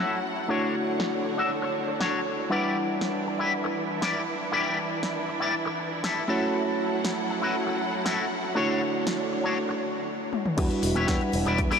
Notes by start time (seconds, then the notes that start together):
Already playing: F#3 A3 C#4 E4 F#4 A4 C#5 F#5
0.00 E4 F#4 A4
0.36 muted clean electric guitar stroke
0.48 D3 A3 D4 E4 F#4 C#5, cross-stick
0.99 muted clean electric guitar stroke, snare
1.24 muted clean electric guitar stroke
1.37 D4 F#4 E5
1.62 muted clean electric guitar stroke, cross-stick
1.75 muted clean electric guitar stroke
1.88 cross-stick
2.00 D4 F#4 C#5, snare
2.38 muted clean electric guitar stroke
2.50 E3 G3 D4 E4 G4 B4 D5 F#5, cross-stick
3.01 muted clean electric guitar stroke, snare
3.26 muted clean electric guitar stroke
3.39 E4 G4 B4
3.64 muted clean electric guitar stroke, cross-stick
3.76 muted clean electric guitar stroke
4.01 E4 G4 D5, snare
4.40 muted clean electric guitar stroke
4.52 E4 G4 D5, cross-stick
5.02 muted clean electric guitar stroke, snare
5.27 muted clean electric guitar stroke
5.40 E4 G4 D5
5.65 muted clean electric guitar stroke, cross-stick
5.78 muted clean electric guitar stroke
6.03 E4 G4 A4 E5, snare
6.28 F#3 A3 C#4 E4 F#4 A4 C#5 F#5 A5
6.54 cross-stick
7.04 muted clean electric guitar stroke, snare
7.29 muted clean electric guitar stroke
7.42 E4 F#4 B4
7.67 muted clean electric guitar stroke, cross-stick
7.79 muted clean electric guitar stroke
8.04 E4 F#4 A4, snare
8.43 muted clean electric guitar stroke
8.55 D3 A3 D4 E4 F#4 C#5, cross-stick
9.06 muted clean electric guitar stroke, snare
9.31 muted clean electric guitar stroke
9.44 D4 F#4 C#5
9.69 muted clean electric guitar stroke, cross-stick
9.81 muted clean electric guitar stroke
10.33 high tom
10.46 mid tom
10.57 E2 G3 D4 E4 F#4 B4 E5, muted clean electric guitar stroke, kick, cross-stick, closed hi-hat, crash, cabasa
10.70 muted clean electric guitar stroke, closed hi-hat, cabasa
10.82 E1, open hi-hat, high bongo, cabasa
10.95 E1 E4 G4 B4 C#5, closed hi-hat, high conga, cabasa
11.07 E2 G3 D4 E4 B4 F#5, kick, snare, closed hi-hat, high bongo, cabasa
11.21 closed hi-hat, cabasa
11.33 E1, open hi-hat, cabasa
11.45 E1 E4 G4 B4 D5, closed hi-hat, high bongo, cabasa
11.58 E2, kick, closed hi-hat, cabasa
11.71 E4 G4 B4 D5, cross-stick, open hi-hat, high bongo, high conga, cabasa